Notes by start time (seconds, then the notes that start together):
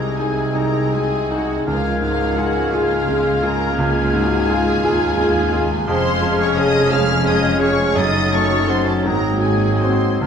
Already playing: C2 C3 G#3 C4 D#4 G#4 A#4 D#5 A#5 G#6
0.18 D#4 G#4 G#5
0.55 F#3 D#4 G#4 A#4 A#5
0.93 G#3 G#4 G#5
1.31 D#4 F#4 G#4 F#5
1.66 C#2 C#3 F3 G#3 C#4 F4 A#4 F5 G#6
2.02 G#2 F4 F5
2.37 F4 F#4 G#4 F#5
2.72 A#3 F4 G#4 F5
3.09 G#3
3.43 F4 G#4 A#4 A#5
3.78 C#2 F4 G#4 G#5
4.13 G#2 F#4
4.48 F4 G#4
4.82 D#2 G#3 F4 G#4
5.18 G#3
5.53 F4 G#4
5.87 F1 F2 G#3 C#4 G#4 C5 F5 C6 G#6
6.22 F3
6.40 C#5 C#6
6.57 C#4 G#4 D#5 D#6
6.90 G#3 C#4 G#4 F5 F6 G#6
7.24 G#3 D#5 D#6
7.60 C#4 G#4 C#5 C#6
7.96 F#1 F#2 F#3 C#4 D#4 A4 D#5 D#6 A6
8.32 A3 C#5 C#6
8.68 C#4 F#4 C5 C6
8.87 A4 A5
9.05 G#1 G#2 F#3 A#3 C4 F#4 A#4 D#5 A#5 G#6
9.42 G#3 G#4 G#5
9.81 C4 F#4 C5 C6
10.21 C#2 C#3 F3 G#3 C#4 F4 C5 F5 C6 G#6